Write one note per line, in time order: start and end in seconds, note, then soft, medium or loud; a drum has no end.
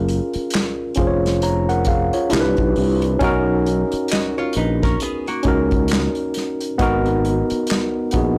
0.00 0.19 F#1 loud
0.00 0.89 C#4 medium
0.00 0.89 F4 medium
0.00 0.90 G#4 medium
0.00 0.94 A#4 medium
0.08 closed hi-hat medium
0.34 muted fretless electric bass stroke medium
0.34 closed hi-hat soft
0.50 closed hi-hat medium
0.55 snare loud
0.55 clap medium
0.95 2.10 F1 medium
0.95 1.82 C#4 medium
0.95 1.42 F4 medium
0.95 kick medium
0.95 closed hi-hat medium
0.99 1.43 G#4 medium
0.99 1.07 C5 medium
1.07 1.42 C#5 medium
1.26 snare soft
1.26 closed hi-hat soft
1.42 1.68 C#5 medium
1.42 1.68 A#5 medium
1.42 closed hi-hat medium
1.69 1.87 A#4 medium
1.69 1.86 F#5 medium
1.69 closed hi-hat soft
1.85 2.13 G#4 medium
1.85 2.12 F5 medium
1.85 kick loud
1.85 closed hi-hat medium
2.13 2.56 F4 medium
2.13 2.56 C#5 medium
2.13 closed hi-hat soft
2.30 2.55 C2 medium
2.30 3.16 D4 medium
2.30 3.17 E4 medium
2.30 3.18 G4 medium
2.30 closed hi-hat medium
2.34 2.41 A#4 medium
2.34 snare loud
2.34 clap loud
2.40 3.22 B4 loud
2.57 2.74 B1 medium
2.57 kick medium
2.57 closed hi-hat soft
2.76 3.16 C2 loud
2.76 open hi-hat medium
3.02 closed hi-hat medium
3.19 3.83 B1 medium
3.19 4.91 C#4 loud
3.19 4.92 D#4 medium
3.19 4.93 F#4 loud
3.19 kick loud
3.19 closed hi-hat medium
3.24 4.94 A#4 loud
3.66 closed hi-hat medium
3.92 muted fretless electric bass stroke soft
3.92 closed hi-hat soft
4.08 4.37 F#4 medium
4.08 4.37 D#5 medium
4.08 closed hi-hat medium
4.13 snare loud
4.13 clap medium
4.38 4.56 F4 medium
4.38 4.55 C#5 medium
4.53 4.95 A#1 medium
4.53 4.82 D#4 medium
4.53 closed hi-hat medium
4.57 4.81 B4 medium
4.83 5.01 C#4 medium
4.83 5.00 A#4 medium
4.83 kick loud
4.83 snare soft
4.83 closed hi-hat soft
5.00 5.27 B3 medium
5.00 5.27 G#4 medium
5.00 closed hi-hat medium
5.27 6.58 A#3 medium
5.27 6.58 F#4 medium
5.27 closed hi-hat soft
5.43 6.07 C#2 medium
5.43 6.73 C#4 medium
5.43 6.73 D#4 medium
5.43 6.74 F#4 medium
5.43 kick medium
5.43 closed hi-hat medium
5.48 6.75 A#4 medium
5.71 kick medium
5.71 closed hi-hat soft
5.88 closed hi-hat medium
5.92 snare loud
5.92 clap medium
6.15 closed hi-hat soft
6.34 snare soft
6.34 closed hi-hat medium
6.61 closed hi-hat medium
6.78 7.41 G#1 loud
6.78 8.07 B3 loud
6.78 8.08 D#4 medium
6.78 8.09 F#4 loud
6.78 kick loud
6.78 closed hi-hat medium
6.82 8.09 A#4 loud
7.06 closed hi-hat soft
7.25 closed hi-hat medium
7.50 muted fretless electric bass stroke soft
7.50 closed hi-hat soft
7.67 closed hi-hat medium
7.71 snare loud
7.71 clap medium
8.11 8.38 A#1 medium
8.11 8.38 B3 medium
8.11 8.38 D#4 medium
8.11 kick loud
8.11 closed hi-hat medium
8.16 8.38 F#4 medium
8.16 8.38 G#4 medium